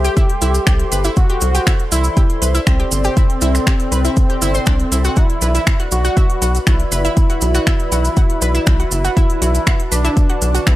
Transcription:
Already playing: analog synth lead G4, analog synth pad A4 C5 E5 C6
0.04 synth pluck G4 G5, closed hi-hat, cabasa
0.17 synth pluck E4 E5, kick, closed hi-hat, cabasa
0.30 closed hi-hat
0.42 analog synth bass C2, synth pluck E4 E5, closed hi-hat, cabasa
0.54 closed hi-hat, cabasa
0.67 analog synth bass C2, synth pluck G4 G5, finger snap, kick, closed hi-hat, cabasa
0.80 closed hi-hat
0.92 analog synth bass G1, synth pluck B4 B5, closed hi-hat, cabasa
1.04 synth pluck E4 E5, closed hi-hat, cabasa
1.16 analog synth lead F#4, analog synth pad D5, kick, closed hi-hat, cabasa
1.30 synth pluck G4 G5, closed hi-hat
1.41 analog synth bass C2, closed hi-hat, cabasa
1.55 synth pluck G4 G5, closed hi-hat, cabasa
1.67 synth pluck E4 E5, finger snap, kick, closed hi-hat, cabasa
1.80 closed hi-hat
1.92 analog synth bass C2, analog synth lead E4, synth pluck E4 E5, closed hi-hat, cabasa
2.04 closed hi-hat, cabasa
2.17 synth pluck G4 G5, kick, closed hi-hat, cabasa
2.30 closed hi-hat
2.42 analog synth bass C2, synth pluck B4 B5, closed hi-hat, cabasa
2.55 synth pluck E4 E5, closed hi-hat, cabasa
2.67 analog synth bass C2, analog synth lead C4, finger snap, kick, closed hi-hat, cabasa
2.80 synth pluck G4 G5, closed hi-hat
2.91 analog synth bass G1, closed hi-hat, cabasa
3.04 synth pluck G4 G5, closed hi-hat, cabasa
3.17 synth pluck E4 E5, kick, closed hi-hat, cabasa
3.30 closed hi-hat
3.41 analog synth bass C2, synth pluck E4 E5, closed hi-hat, cabasa
3.55 finger snap, closed hi-hat, cabasa
3.67 synth pluck G4 G5, finger snap, kick, closed hi-hat, cabasa
3.80 closed hi-hat
3.92 analog synth bass C2, synth pluck B4 B5, closed hi-hat, cabasa
4.05 synth pluck E4 E5, closed hi-hat, cabasa
4.16 kick, closed hi-hat, cabasa
4.30 synth pluck G4 G5, closed hi-hat
4.42 analog synth bass G1, synth pluck E4 E5, closed hi-hat, cabasa
4.54 synth pluck C5 C6, closed hi-hat, cabasa
4.66 analog synth bass C2, synth pluck D4 D5, finger snap, kick, closed hi-hat, cabasa
4.80 closed hi-hat
4.92 analog synth bass C2, synth pluck E4 E5, closed hi-hat, cabasa
5.05 synth pluck F#4 F#5, closed hi-hat, cabasa
5.16 analog synth lead E4, analog synth pad F#4 B4 B5, synth pluck F#4 F#5, kick, closed hi-hat, cabasa
5.30 closed hi-hat
5.41 analog synth bass B1, synth pluck B4 B5, closed hi-hat, cabasa
5.55 synth pluck E4 E5, closed hi-hat, cabasa
5.67 finger snap, kick, closed hi-hat, cabasa
5.80 synth pluck F#4 F#5, closed hi-hat
5.91 analog synth bass B1, analog synth lead F#4, closed hi-hat, cabasa
6.05 synth pluck F#4 F#5, closed hi-hat, cabasa
6.17 synth pluck E4 E5, kick, closed hi-hat, cabasa
6.30 closed hi-hat
6.42 analog synth bass B1, synth pluck F#4 F#5, closed hi-hat, cabasa
6.55 closed hi-hat, cabasa
6.67 analog synth bass B1, analog synth lead E4, synth pluck F#4 F#5, finger snap, kick, closed hi-hat, cabasa
6.80 closed hi-hat
6.92 analog synth bass F#1, synth pluck B4 B5, closed hi-hat, cabasa
7.05 synth pluck E4 E5, closed hi-hat, cabasa
7.17 kick, closed hi-hat, cabasa
7.30 synth pluck F#4 F#5, closed hi-hat
7.41 analog synth bass B1, closed hi-hat, cabasa
7.55 synth pluck F#4 F#5, finger snap, closed hi-hat, cabasa
7.67 synth pluck E4 E5, finger snap, kick, closed hi-hat, cabasa
7.80 closed hi-hat
7.92 analog synth bass B1, synth pluck F#4 F#5, closed hi-hat, cabasa
8.05 closed hi-hat, cabasa
8.17 synth pluck F#4 F#5, kick, closed hi-hat, cabasa
8.30 closed hi-hat
8.42 analog synth bass B1, synth pluck B4 B5, closed hi-hat, cabasa
8.55 synth pluck E4 E5, closed hi-hat, cabasa
8.66 analog synth bass B1, finger snap, kick, closed hi-hat, cabasa
8.80 synth pluck F#4 F#5, closed hi-hat
8.91 analog synth bass F#1, closed hi-hat, cabasa
9.05 synth pluck F#4 F#5, closed hi-hat, cabasa
9.17 synth pluck E4 E5, analog synth lead E4, analog synth pad A5, kick, closed hi-hat, cabasa
9.30 closed hi-hat
9.42 analog synth bass B1, synth pluck F#4 F#5, closed hi-hat, cabasa
9.55 closed hi-hat, cabasa
9.67 synth pluck F#4 F#5, finger snap, kick, closed hi-hat, cabasa
9.80 closed hi-hat
9.92 analog synth bass B1, analog synth lead D4, synth pluck B4 B5, closed hi-hat, cabasa
10.05 synth pluck E4 E5, closed hi-hat, cabasa
10.17 kick, closed hi-hat, cabasa
10.30 synth pluck F#4 F#5, closed hi-hat
10.42 analog synth bass B1, closed hi-hat, cabasa
10.55 synth pluck F#4 F#5, closed hi-hat, cabasa
10.67 analog synth bass B1, analog synth lead B3, synth pluck E4 E5, finger snap, kick, closed hi-hat, cabasa

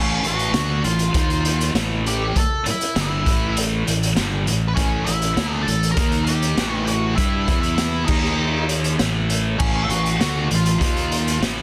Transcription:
Already playing: fingered electric bass A1, distorted electric guitar A2 E3 A3, lead electric guitar C#4 C#5
0.22 fingered electric bass A1, distorted electric guitar A2 E3, closed hi-hat
0.26 lead electric guitar F#4 F#5
0.39 closed hi-hat
0.53 fingered electric bass D2, distorted electric guitar D3 A3 D4, snare, closed hi-hat
0.83 fingered electric bass A1, distorted electric guitar A2 E3, lead electric guitar F4 F5, closed hi-hat
0.99 closed hi-hat
1.14 fingered electric bass D#2, distorted electric guitar D#3 A#3 D#4, kick, closed hi-hat
1.30 closed hi-hat
1.45 closed hi-hat
1.61 closed hi-hat
1.74 fingered electric bass A1, distorted electric guitar A2 E3 A3, snare, closed hi-hat
2.06 lead electric guitar G4 G5, closed hi-hat
2.36 lead electric guitar A4 A5, muted distorted electric guitar stroke, muted fingered electric bass stroke, kick, closed hi-hat
2.65 lead electric guitar E4, muted distorted electric guitar stroke, muted fingered electric bass stroke, closed hi-hat
2.71 lead electric guitar E5
2.81 closed hi-hat
2.96 fingered electric bass G1, distorted electric guitar G2 D3 G3, lead electric guitar E4, snare, closed hi-hat
3.01 lead electric guitar E5
3.24 fingered electric bass A1, distorted electric guitar A2 E3 A3, kick, closed hi-hat
3.57 closed hi-hat
3.86 fingered electric bass A1, distorted electric guitar A2 E3, closed hi-hat
4.03 closed hi-hat
4.16 fingered electric bass G1, distorted electric guitar G2 D3 G3, snare, closed hi-hat
4.46 fingered electric bass A1, distorted electric guitar A2 E3, closed hi-hat
4.68 lead electric guitar B4
4.75 fingered electric bass A1, distorted electric guitar A2 E3 A3, lead electric guitar C#4 C#5, kick, closed hi-hat
5.04 fingered electric bass A1, distorted electric guitar A2 E3, lead electric guitar E4 E5, closed hi-hat
5.22 closed hi-hat
5.36 fingered electric bass D2, distorted electric guitar D3 A3 D4, snare, closed hi-hat
5.53 lead electric guitar D5
5.63 fingered electric bass A1, lead electric guitar A4 A5
5.68 distorted electric guitar A2 E3, closed hi-hat
5.83 closed hi-hat
5.92 lead electric guitar A#4 A#5
5.97 fingered electric bass D#2, distorted electric guitar D#3 A#3 D#4, kick, closed hi-hat
6.12 closed hi-hat
6.25 lead electric guitar G4 G5, closed hi-hat
6.42 closed hi-hat
6.57 fingered electric bass A1, distorted electric guitar A2 E3 A3, snare, closed hi-hat
6.74 lead electric guitar F5
6.85 lead electric guitar F#4 F#5, closed hi-hat
7.16 fingered electric bass G2, distorted electric guitar G3 D4 G4, lead electric guitar E4 E5, kick, closed hi-hat
7.47 fingered electric bass E2, distorted electric guitar E3 B3 E4, kick, closed hi-hat
7.61 lead electric guitar E4 E5, closed hi-hat
7.76 lead electric guitar E4 E5, snare, closed hi-hat
8.05 fingered electric bass D#2, distorted electric guitar D#3 A#3, lead electric guitar D#4 D#5, kick, crash
8.09 distorted electric guitar D#4
8.24 snare
8.69 closed hi-hat
8.84 closed hi-hat
8.99 fingered electric bass A1, distorted electric guitar A2 E3 A3, snare, closed hi-hat
9.30 closed hi-hat
9.59 fingered electric bass A1, distorted electric guitar A2 E3 A3, lead electric guitar C#4 C#5, kick, crash
9.83 lead electric guitar E5
9.89 fingered electric bass A1, distorted electric guitar A2 E3, lead electric guitar F#4 F#5, closed hi-hat
10.06 closed hi-hat
10.19 fingered electric bass D2, distorted electric guitar D3 A3 D4, snare, closed hi-hat
10.48 fingered electric bass A1, distorted electric guitar A2 E3, closed hi-hat
10.54 lead electric guitar F4 F5
10.65 closed hi-hat
10.79 fingered electric bass D#2, distorted electric guitar D#3 A#3 D#4, kick, closed hi-hat
10.97 closed hi-hat
11.12 closed hi-hat
11.27 closed hi-hat
11.39 fingered electric bass A1, distorted electric guitar A2 E3 A3, snare, closed hi-hat

